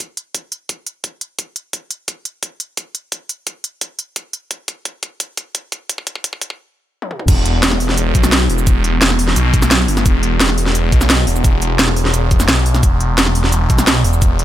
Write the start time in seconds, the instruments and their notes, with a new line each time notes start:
0.17 closed hi-hat
0.35 kick, closed hi-hat
0.52 closed hi-hat
0.69 kick, closed hi-hat
0.87 closed hi-hat
1.04 kick, closed hi-hat
1.21 closed hi-hat
1.39 kick, closed hi-hat
1.56 closed hi-hat
1.73 kick, closed hi-hat
1.91 closed hi-hat
2.08 kick, closed hi-hat
2.25 closed hi-hat
2.43 kick, closed hi-hat
2.60 closed hi-hat
2.77 kick, closed hi-hat
2.95 closed hi-hat
3.12 kick, closed hi-hat
3.29 closed hi-hat
3.47 kick, closed hi-hat
3.64 closed hi-hat
3.81 kick, closed hi-hat
3.99 closed hi-hat
4.16 kick, closed hi-hat
4.33 closed hi-hat
4.51 kick, closed hi-hat
4.68 kick, closed hi-hat
4.85 kick, closed hi-hat
5.03 kick, closed hi-hat
5.20 kick, closed hi-hat
5.37 kick, closed hi-hat
5.55 kick, closed hi-hat
5.72 kick, closed hi-hat
5.89 kick, closed hi-hat
5.98 kick
6.07 kick, closed hi-hat
6.15 kick
6.24 kick, closed hi-hat
6.33 kick
6.41 kick, closed hi-hat
6.50 kick
7.02 high tom
7.11 mid tom
7.19 mid tom
7.28 detuned saw bass E1, kick, closed hi-hat, crash, cabasa
7.46 closed hi-hat
7.63 snare, closed hi-hat, cabasa
7.71 snare
7.80 open hi-hat
7.89 snare
7.98 closed hi-hat, cabasa
8.15 detuned saw bass B1, kick, closed hi-hat, cabasa
8.23 snare, cabasa
8.32 snare, closed hi-hat, cabasa
8.49 detuned saw bass E1, open hi-hat
8.58 cabasa
8.67 kick, closed hi-hat, cabasa
8.84 closed hi-hat
9.01 detuned saw bass E1, snare, closed hi-hat, cabasa
9.10 snare
9.19 open hi-hat
9.28 snare
9.36 detuned saw bass B1, closed hi-hat, cabasa
9.54 kick, closed hi-hat, cabasa
9.62 snare, cabasa
9.71 snare, closed hi-hat, cabasa
9.88 detuned saw bass G1, open hi-hat
9.97 snare, cabasa
10.06 detuned saw bass E1, kick, closed hi-hat, cabasa
10.23 closed hi-hat
10.40 snare, closed hi-hat, cabasa
10.49 snare
10.58 open hi-hat
10.66 snare
10.75 closed hi-hat, cabasa
10.92 detuned saw bass B1, kick, closed hi-hat, cabasa
11.01 snare, cabasa
11.10 snare, closed hi-hat, cabasa
11.27 detuned saw bass E1, open hi-hat
11.36 cabasa
11.44 kick, closed hi-hat, cabasa
11.62 closed hi-hat, cabasa
11.79 detuned saw bass E1, snare, closed hi-hat, cabasa
11.88 snare
11.96 open hi-hat
12.05 snare
12.14 detuned saw bass E1, closed hi-hat, cabasa
12.31 kick, closed hi-hat, cabasa
12.40 snare, cabasa
12.48 detuned saw bass B1, snare, closed hi-hat, cabasa
12.66 open hi-hat
12.74 snare, cabasa
12.83 detuned saw bass E1, kick, closed hi-hat, cabasa
13.00 closed hi-hat
13.18 snare, closed hi-hat, cabasa
13.26 snare
13.35 open hi-hat
13.44 snare
13.52 closed hi-hat, cabasa
13.70 detuned saw bass B1, kick, closed hi-hat, cabasa
13.78 snare, cabasa
13.87 snare, closed hi-hat, cabasa
14.04 detuned saw bass E1, open hi-hat
14.13 cabasa
14.22 kick, closed hi-hat, cabasa
14.39 closed hi-hat